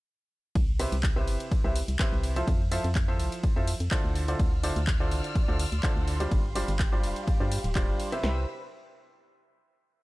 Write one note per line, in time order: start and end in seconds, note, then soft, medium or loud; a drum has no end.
0.55 0.88 C2 loud
0.55 kick loud
0.55 closed hi-hat medium
0.55 ride medium
0.80 0.94 C3 medium
0.80 0.94 E4 medium
0.80 0.94 G4 medium
0.80 0.94 B4 medium
0.80 0.94 C5 medium
0.80 0.94 E5 loud
0.80 open hi-hat loud
0.80 ride medium
0.92 1.29 C2 medium
0.92 closed hi-hat medium
1.03 kick loud
1.03 clap loud
1.03 closed hi-hat medium
1.03 ride medium
1.16 1.61 C3 medium
1.16 1.61 E4 medium
1.16 1.61 G4 medium
1.16 1.61 B4 medium
1.16 1.61 C5 medium
1.16 1.61 E5 medium
1.27 1.37 G1 loud
1.27 open hi-hat medium
1.27 ride medium
1.40 closed hi-hat medium
1.51 kick loud
1.51 closed hi-hat medium
1.51 ride medium
1.64 1.83 C2 loud
1.64 1.77 C3 medium
1.64 1.77 E4 medium
1.64 1.77 G4 medium
1.64 1.77 B4 medium
1.64 1.77 C5 medium
1.64 1.77 E5 medium
1.76 open hi-hat loud
1.76 ride medium
1.88 1.97 C2 medium
1.88 closed hi-hat medium
1.99 2.33 C3 medium
1.99 2.33 E4 medium
1.99 2.33 G4 medium
1.99 2.33 B4 medium
1.99 2.33 C5 medium
1.99 2.33 E5 loud
1.99 kick loud
1.99 clap loud
1.99 closed hi-hat medium
1.99 ride medium
2.12 2.43 C2 medium
2.24 open hi-hat medium
2.24 ride medium
2.36 2.58 F3 medium
2.36 2.58 E4 medium
2.36 2.58 F4 medium
2.36 2.58 A4 medium
2.36 2.58 C5 medium
2.36 2.58 E5 medium
2.36 closed hi-hat medium
2.47 2.80 F2 loud
2.47 kick loud
2.47 closed hi-hat medium
2.47 ride medium
2.72 2.86 F3 medium
2.72 2.86 E4 medium
2.72 2.86 F4 medium
2.72 2.86 A4 medium
2.72 2.86 C5 medium
2.72 2.86 E5 loud
2.72 open hi-hat loud
2.72 ride medium
2.84 3.21 F2 medium
2.84 closed hi-hat medium
2.95 kick loud
2.95 clap loud
2.95 closed hi-hat medium
2.95 ride medium
3.08 3.53 F3 medium
3.08 3.53 E4 medium
3.08 3.53 F4 medium
3.08 3.53 A4 medium
3.08 3.53 C5 medium
3.08 3.53 E5 medium
3.20 3.29 C2 loud
3.20 open hi-hat loud
3.20 ride medium
3.32 closed hi-hat medium
3.43 kick loud
3.43 closed hi-hat medium
3.43 ride medium
3.56 3.75 F2 loud
3.56 3.69 F3 medium
3.56 3.69 E4 medium
3.56 3.69 F4 medium
3.56 3.69 A4 medium
3.56 3.69 C5 medium
3.56 3.69 E5 medium
3.67 open hi-hat loud
3.67 ride medium
3.80 3.89 F2 medium
3.80 closed hi-hat medium
3.91 4.25 D3 loud
3.91 4.25 E4 medium
3.91 4.25 F4 medium
3.91 4.25 A4 medium
3.91 4.25 C5 medium
3.91 4.25 D5 loud
3.91 kick loud
3.91 clap loud
3.91 closed hi-hat medium
3.91 ride medium
4.04 4.35 D2 medium
4.15 open hi-hat loud
4.15 ride medium
4.28 4.50 D3 medium
4.28 4.50 E4 medium
4.28 4.50 F4 medium
4.28 4.50 A4 medium
4.28 4.50 C5 medium
4.28 4.50 D5 medium
4.28 closed hi-hat medium
4.39 4.72 D2 loud
4.39 6.30 D5 medium
4.39 8.20 C6 medium
4.39 6.30 E6 medium
4.39 6.30 F6 medium
4.39 kick loud
4.39 closed hi-hat medium
4.39 ride medium
4.63 4.78 D3 medium
4.63 4.78 E4 medium
4.63 4.78 F4 medium
4.63 4.78 A4 medium
4.63 4.78 C5 medium
4.63 4.78 D5 loud
4.63 open hi-hat loud
4.63 ride medium
4.76 5.13 D2 medium
4.76 closed hi-hat medium
4.87 kick loud
4.87 clap loud
4.87 closed hi-hat medium
4.87 ride medium
5.00 5.45 D3 medium
5.00 5.45 E4 medium
5.00 5.45 F4 medium
5.00 5.45 A4 medium
5.00 5.45 C5 medium
5.00 5.45 D5 medium
5.11 5.21 C2 loud
5.11 open hi-hat loud
5.11 ride medium
5.24 closed hi-hat medium
5.35 kick loud
5.35 closed hi-hat medium
5.35 ride medium
5.48 5.67 D2 loud
5.48 5.61 D3 medium
5.48 5.61 E4 medium
5.48 5.61 F4 medium
5.48 5.61 A4 medium
5.48 5.61 C5 medium
5.48 5.61 D5 medium
5.59 open hi-hat loud
5.59 ride medium
5.72 5.81 D2 medium
5.72 closed hi-hat medium
5.83 6.17 D3 loud
5.83 6.17 E4 medium
5.83 6.17 F4 medium
5.83 6.17 A4 medium
5.83 6.17 C5 medium
5.83 6.17 D5 loud
5.83 kick loud
5.83 clap loud
5.83 closed hi-hat medium
5.83 ride medium
5.96 6.27 D2 medium
6.08 open hi-hat loud
6.08 ride medium
6.20 6.42 G3 medium
6.20 6.42 D4 medium
6.20 6.42 F4 medium
6.20 6.42 G4 medium
6.20 6.42 C5 medium
6.20 6.42 D5 medium
6.20 closed hi-hat medium
6.31 6.64 G1 loud
6.31 8.22 G4 medium
6.31 8.22 F5 medium
6.31 kick loud
6.31 closed hi-hat medium
6.31 ride medium
6.55 6.70 G3 medium
6.55 6.70 D4 medium
6.55 6.70 F4 medium
6.55 6.70 G4 medium
6.55 6.70 C5 medium
6.55 6.70 D5 loud
6.55 open hi-hat loud
6.55 ride medium
6.68 7.05 G1 medium
6.68 closed hi-hat medium
6.79 kick loud
6.79 clap loud
6.79 closed hi-hat medium
6.79 ride medium
6.92 7.37 G3 medium
6.92 7.37 D4 medium
6.92 7.37 F4 medium
6.92 7.37 G4 medium
6.92 7.37 C5 medium
6.92 7.37 D5 medium
7.04 7.13 F1 loud
7.04 open hi-hat loud
7.04 ride medium
7.16 closed hi-hat medium
7.27 kick loud
7.27 closed hi-hat medium
7.27 ride medium
7.40 7.59 G2 loud
7.40 7.53 G3 medium
7.40 7.53 D4 medium
7.40 7.53 F4 medium
7.40 7.53 G4 medium
7.40 7.53 C5 medium
7.40 7.53 D5 medium
7.52 open hi-hat loud
7.52 ride medium
7.64 7.90 D1 loud
7.64 closed hi-hat medium
7.75 8.09 G3 medium
7.75 8.09 D4 medium
7.75 8.09 F4 medium
7.75 8.09 G4 medium
7.75 8.09 C5 medium
7.75 8.09 D5 loud
7.75 kick loud
7.75 clap loud
7.75 closed hi-hat soft
7.75 ride medium
7.88 7.97 G1 medium
8.00 open hi-hat loud
8.00 ride medium
8.12 8.34 C3 medium
8.12 8.22 E4 medium
8.12 8.22 G4 medium
8.12 8.22 B4 medium
8.12 8.22 C5 medium
8.12 8.22 E5 medium
8.12 closed hi-hat medium
8.23 8.46 C2 medium
8.23 8.42 E4 medium
8.23 8.42 G4 medium
8.23 8.42 B4 medium
8.23 8.46 C5 medium
8.23 8.42 C5 medium
8.23 8.42 E5 loud
8.23 8.46 B5 medium
8.23 8.46 E6 medium
8.23 snare loud